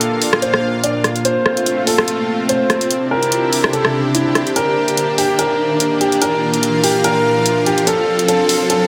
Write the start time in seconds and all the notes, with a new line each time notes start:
Already playing: A#2 A#3 D4 F4 G4 A4 F5 G5, riser
0.01 closed hi-hat
0.22 open hi-hat
0.33 cross-stick
0.42 C5, closed hi-hat
0.54 cross-stick
0.84 D5, closed hi-hat
1.04 cross-stick, closed hi-hat
1.16 closed hi-hat
1.25 A3 C4 F4 C5, closed hi-hat
1.46 cross-stick
1.57 closed hi-hat
1.66 closed hi-hat
1.87 A4 A5, open hi-hat
1.98 cross-stick
2.08 closed hi-hat
2.49 C5, closed hi-hat
2.70 cross-stick, closed hi-hat
2.81 closed hi-hat
2.91 C3 D4 E4 G4, closed hi-hat
3.11 A#4
3.23 closed hi-hat
3.32 closed hi-hat
3.39 G4
3.53 open hi-hat
3.64 C5 E5, cross-stick
3.73 A4, closed hi-hat
3.85 cross-stick
4.15 E4, closed hi-hat
4.35 cross-stick, closed hi-hat
4.47 closed hi-hat
4.56 A#3 A#4, closed hi-hat
4.88 closed hi-hat
4.97 closed hi-hat
5.10 A#4
5.18 G4, open hi-hat
5.31 G5
5.39 A#4, closed hi-hat
5.80 closed hi-hat
6.01 G4, closed hi-hat
6.12 closed hi-hat
6.22 A#2 F4 A#4 F5, closed hi-hat
6.29 F4
6.54 closed hi-hat
6.63 closed hi-hat
6.84 G4, open hi-hat
6.97 F5
7.04 A#4, closed hi-hat
7.46 closed hi-hat
7.66 G4, closed hi-hat
7.78 closed hi-hat
7.87 C4 A4, closed hi-hat
8.19 closed hi-hat
8.28 A4, closed hi-hat
8.49 open hi-hat
8.70 A4, closed hi-hat